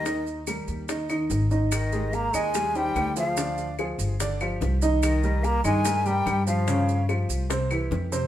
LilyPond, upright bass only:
\new Staff \with { instrumentName = "Upright bass" } { \clef bass \time 4/4 \key aes \lydian \tempo 4 = 145 ees,4. ees,4. aes,,4~ | \key aes \major aes,,4. ees,4. d,4~ | d,4. g,,4. c,4~ | c,4. g,4. g,4~ |
g,4. c,4. f,4 | }